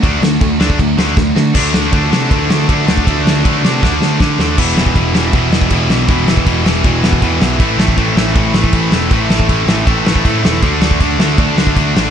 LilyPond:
<<
  \new Staff \with { instrumentName = "Distorted electric guitar" } { \time 4/4 \key d \mixolydian \tempo 4 = 159 <d fis a d' fis'>2.~ <d fis a d' fis'>8 <d fis a d' fis'>8 | <d fis a d' fis'>1 | <d fis a d' fis'>1 | <e g b e'>4. <e g b e'>2~ <e g b e'>8 |
<e g b e'>4. <e g b e'>2~ <e g b e'>8 | <a, e a c' e'>4. <a, e a c' e'>2~ <a, e a c' e'>8 | <a, e a c' e'>4. <a, e a c' e'>2~ <a, e a c' e'>8 | <d a d' fis'>4. <d a d' fis'>2~ <d a d' fis'>8 | }
  \new Staff \with { instrumentName = "Distorted electric guitar" } { \clef bass \time 4/4 \key d \mixolydian <d a d'>8 <d a>8 <d a>8 <d a d'>8 <d a>8 <d a d'>8 <d a>8 <d a>8 | <d a d'>4 <d a d'>8 <d a d'>8 <d a d'>4 <d a d'>8 <d a d'>8 | <d a d'>4 <d a d'>8 <d a d'>8 <d a d'>4 <d a d'>8 <d a d'>8 | <e, b, e>8 <e, b, e>8 <e, b, e>8 <e, b, e>8 <e, b, e>8 <e, b, e>8 <e, b, e>8 <e, b, e>8 |
<e, b, e>8 <e, b, e>8 <e, b, e>8 <e, b, e>8 <e, b, e>8 <e, b, e>8 <e, b, e>8 <e, b, e>8 | <a, e a>8 <a, e a>8 <a, e a>8 <a, e a>8 <a, e a>8 <a, e a>8 <a, e a>8 <a, e a>8 | <a, e a>8 <a, e a>8 <a, e a>8 <a, e a>8 <a, e a>8 <a, e a>8 <a, e a>8 <a, e a>8 | <d a d'>8 <d a d'>8 <d a d'>8 <d a d'>8 <d a d'>8 <d a d'>8 <d a d'>8 <d a d'>8 | }
  \new Staff \with { instrumentName = "Distorted electric guitar" } { \clef bass \time 4/4 \key d \mixolydian <d a d'>8 <d a>8 <d a>8 <d a d'>8 <d a>8 <d a d'>8 <d a>8 <d a>8 | <d a d'>4 <d a d'>8 <d a d'>8 <d a d'>4 <d a d'>8 <d a d'>8 | <d a d'>4 <d a d'>8 <d a d'>8 <d a d'>4 <d a d'>8 <d a d'>8 | <e, b, e>8 <e, b, e>8 <e, b, e>8 <e, b, e>8 <e, b, e>8 <e, b, e>8 <e, b, e>8 <e, b, e>8 |
<e, b, e>8 <e, b, e>8 <e, b, e>8 <e, b, e>8 <e, b, e>8 <e, b, e>8 <e, b, e>8 <e, b, e>8 | <a, e a>8 <a, e a>8 <a, e a>8 <a, e a>8 <a, e a>8 <a, e a>8 <a, e a>8 <a, e a>8 | <a, e a>8 <a, e a>8 <a, e a>8 <a, e a>8 <a, e a>8 <a, e a>8 <a, e a>8 <a, e a>8 | <d a d'>8 <d a d'>8 <d a d'>8 <d a d'>8 <d a d'>8 <d a d'>8 <d a d'>8 <d a d'>8 | }
  \new Staff \with { instrumentName = "Picked electric bass" } { \clef bass \time 4/4 \key d \mixolydian d,8 d,8 d,8 d,8 d,8 d,8 d,8 d8 | d,8 d,8 d,8 c8 d,8 d,8 d8 d,8 | d,8 d,8 d,8 c8 d,8 d,8 d8 dis,8 | e,,8 e,,8 e,,8 e,,8 e,,8 e,,8 e,,8 b,,8 |
e,,8 e,,8 e,,8 e,,8 e,,4 e,8 b,,8 | a,,8 a,,8 a,,8 a,,8 a,,8 a,,8 a,,8 e,,8 | a,,8 a,,8 a,,8 a,,8 a,,4 a,8 e,,8 | d,8 d,8 d,8 d,8 d,8 d,8 d,8 a,,8 | }
  \new DrumStaff \with { instrumentName = "Drums" } \drummode { \time 4/4 <cymc bd>8 sn8 <cymc bd>8 sn16 bd16 <cymc bd>8 sn8 <bd sn>8 sn8 | <cymc bd>8 sn8 <bd cymr>8 sn8 <bd cymr>8 sn8 <bd cymr>8 sn16 bd16 | <bd cymr>8 sn8 <bd cymr>8 sn8 <bd sn>8 sn8 <bd sn>8 sn8 | <cymc bd>8 sn16 bd16 <cymc bd>8 sn8 <cymc bd>8 sn16 bd16 <cymc bd>8 sn8 |
<cymc bd>8 sn16 bd16 <cymc bd>8 sn8 <cymc bd>8 sn16 bd16 <cymc bd>8 sn8 | <cymc bd>8 sn16 bd16 <cymc bd>8 sn8 <cymc bd>8 sn16 bd16 <cymc bd>8 sn8 | <cymc bd>8 sn16 bd16 <cymc bd>8 sn8 <cymc bd>8 sn16 bd16 <cymc bd>8 sn8 | <cymc bd>8 sn16 bd16 <cymc bd>8 sn8 <cymc bd>8 sn16 bd16 <cymc bd>8 sn8 | }
>>